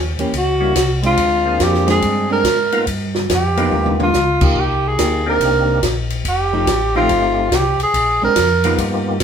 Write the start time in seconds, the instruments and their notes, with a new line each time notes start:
Already playing: tonewheel organ D#2
0.18 tonewheel organ D#2, hollow-body jazz guitar E3 A#3 C#4 G4, ride
0.33 tonewheel organ C#2, kick, ride
0.37 tenor saxophone F#4
0.60 tonewheel organ G3 A#3 C#4 E4 F#4
0.75 tonewheel organ C2, kick, snare, hi-hat pedal, ride
1.03 hollow-body jazz guitar G#3 C4 D4, tenor saxophone F4, ride
1.17 tonewheel organ D2, kick, ride
1.46 tonewheel organ A#3 C4 D4 F4 G#4
1.60 tonewheel organ F2, tenor saxophone G4, kick, snare, hi-hat pedal, ride
1.74 snare
1.87 hollow-body jazz guitar G#3 C4 D4, tenor saxophone G#4, snare, ride
2.02 tonewheel organ G2, kick, ride
2.29 hollow-body jazz guitar G#3 C4 D4, tenor saxophone A#4
2.44 tonewheel organ G#2, kick, snare, hi-hat pedal, ride
2.72 tonewheel organ A#3 B3 D#4 F4 A#4, ride
2.87 tonewheel organ G2, kick, ride
3.15 snare
3.29 tonewheel organ F2, kick, snare, hi-hat pedal, ride
3.34 tenor saxophone G4
3.57 hollow-body jazz guitar F3 B3 D#4, tonewheel organ A#3 B3 D#4 F4 G4, ride
3.72 tonewheel organ D#2, high tom
3.86 high tom
4.00 tenor saxophone F4, high tom
4.14 tonewheel organ C#2, snare, hi-hat pedal
4.41 hollow-body jazz guitar A#3 D#4 G4, kick, crash
4.56 tonewheel organ C2, tenor saxophone G4, kick
4.88 tenor saxophone G#4
4.98 tonewheel organ D2, hollow-body jazz guitar A#3 D#4 G4, kick, snare, hi-hat pedal, ride
5.26 tonewheel organ A#3 C4 D4 D#4 G4, tenor saxophone A#4
5.40 tonewheel organ C2, kick, ride
5.82 tonewheel organ A#1, kick, snare, hi-hat pedal, ride
6.10 ride
6.25 tonewheel organ F1, tenor saxophone G4, kick, ride
6.53 hollow-body jazz guitar F3 A3 D#4 G4
6.67 tonewheel organ A1, kick, snare, hi-hat pedal, ride
6.95 hollow-body jazz guitar F3 A3 D#4 G4, tonewheel organ A3 C4 D#4 F4 G4, tenor saxophone F4
7.09 tonewheel organ G1, kick, ride
7.51 tonewheel organ C2, tenor saxophone G4, kick, snare, hi-hat pedal, ride
7.78 tonewheel organ C2, ride
7.83 tenor saxophone G#4
7.94 tonewheel organ A#1, kick, ride
8.21 tonewheel organ A#1, hollow-body jazz guitar G#3 C4 D4, tenor saxophone A#4
8.36 tonewheel organ F2, kick, snare, hi-hat pedal, ride
8.64 hollow-body jazz guitar F3 B3 D#4, tonewheel organ A#3 B3 D#4 F4 G4, ride
8.78 tonewheel organ G2, kick, ride
9.20 tonewheel organ B2, snare, hi-hat pedal, ride